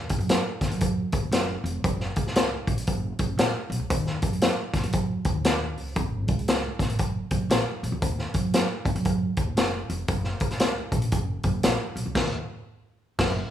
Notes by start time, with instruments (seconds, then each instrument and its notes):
0.09 kick, closed hi-hat
0.18 upright bass F#2, closed hi-hat
0.29 snare, closed hi-hat
0.61 upright bass D#2, kick, snare, closed hi-hat
0.70 upright bass F#2, closed hi-hat
0.81 kick, closed hi-hat
1.12 upright bass D#2, kick, closed hi-hat
1.31 upright bass F#1, snare, closed hi-hat
1.64 upright bass F1, closed hi-hat
1.84 upright bass F#1, kick, closed hi-hat
2.00 snare
2.16 upright bass C#2, kick, closed hi-hat
2.27 snare
2.36 snare, closed hi-hat
2.67 upright bass A#1, kick, closed hi-hat
2.78 closed hi-hat
2.87 upright bass F#1, kick, closed hi-hat
3.19 upright bass F#1, kick, closed hi-hat
3.38 upright bass A#1, snare, closed hi-hat
3.70 upright bass B1, closed hi-hat
3.79 upright bass C#2
3.90 upright bass D#2, kick, closed hi-hat
4.07 snare
4.22 upright bass F#2, kick, closed hi-hat
4.33 closed hi-hat
4.42 snare, closed hi-hat
4.73 upright bass D#2, kick, snare, closed hi-hat
4.83 upright bass F#2, closed hi-hat
4.93 kick, closed hi-hat
5.25 upright bass D#2, kick, closed hi-hat
5.45 snare, closed hi-hat
5.77 upright bass C#2, open hi-hat
5.96 upright bass F#1, kick, closed hi-hat
6.28 upright bass C#2, kick, closed hi-hat
6.39 closed hi-hat
6.48 snare, closed hi-hat
6.79 upright bass A#1, kick, snare, closed hi-hat
6.90 closed hi-hat
6.99 upright bass F#1, kick, closed hi-hat
7.31 upright bass F#1, kick, closed hi-hat
7.50 upright bass A#1, snare, closed hi-hat
7.83 upright bass B1, closed hi-hat
7.92 upright bass C#2
8.02 upright bass D#2, kick, closed hi-hat
8.19 snare
8.34 upright bass F#2, kick, closed hi-hat
8.54 snare, closed hi-hat
8.85 upright bass D#2, kick, closed hi-hat
8.95 upright bass F#2, closed hi-hat
9.05 kick, closed hi-hat
9.37 upright bass D#2, kick, closed hi-hat
9.57 upright bass F#1, snare, closed hi-hat
9.90 upright bass F1, closed hi-hat
10.08 upright bass F#1, kick, closed hi-hat
10.24 snare
10.40 upright bass C#2, kick, closed hi-hat
10.51 snare, closed hi-hat
10.60 snare, closed hi-hat
10.92 upright bass A#1, kick, closed hi-hat
11.02 closed hi-hat
11.12 upright bass F#1, kick, closed hi-hat
11.43 upright bass F#1, kick, closed hi-hat
11.63 upright bass A#1, snare, closed hi-hat
11.96 upright bass B1, closed hi-hat
12.06 upright bass C#2
12.15 upright bass D#2, kick, snare, crash
13.19 upright bass F#1, kick, snare, crash